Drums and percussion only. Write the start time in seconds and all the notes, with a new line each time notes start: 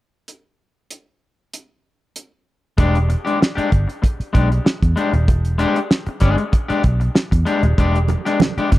0.28 closed hi-hat
0.91 closed hi-hat
1.53 closed hi-hat
2.16 closed hi-hat
2.78 kick, closed hi-hat
2.95 closed hi-hat
3.10 closed hi-hat
3.27 closed hi-hat
3.42 snare
3.58 closed hi-hat
3.72 kick, closed hi-hat
3.89 closed hi-hat
4.04 kick, closed hi-hat
4.21 closed hi-hat
4.35 kick, closed hi-hat
4.52 closed hi-hat
4.66 snare
4.83 kick, closed hi-hat
4.97 closed hi-hat
5.13 closed hi-hat
5.28 kick, closed hi-hat
5.45 closed hi-hat
5.59 closed hi-hat
5.76 closed hi-hat
5.91 snare
6.06 closed hi-hat
6.20 kick, snare, closed hi-hat
6.38 closed hi-hat
6.53 kick, closed hi-hat
6.70 closed hi-hat
6.84 kick, closed hi-hat
7.01 closed hi-hat
7.15 snare
7.32 kick, closed hi-hat
7.46 closed hi-hat
7.63 closed hi-hat
7.78 kick, closed hi-hat
7.95 closed hi-hat
8.08 closed hi-hat, muted conga
8.26 snare, closed hi-hat
8.40 snare, high conga
8.58 closed hi-hat
8.72 kick, snare, closed hi-hat